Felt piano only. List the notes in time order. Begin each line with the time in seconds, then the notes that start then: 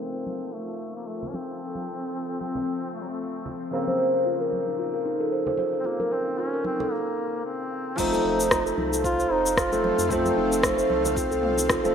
Already playing: F3 A3 C4
3.71 C#3 A#3 C4
7.96 F3 A3
8.00 C4
9.71 F3 A3 C4
10.08 F3 A3
10.12 C4
11.83 F3 A3 C4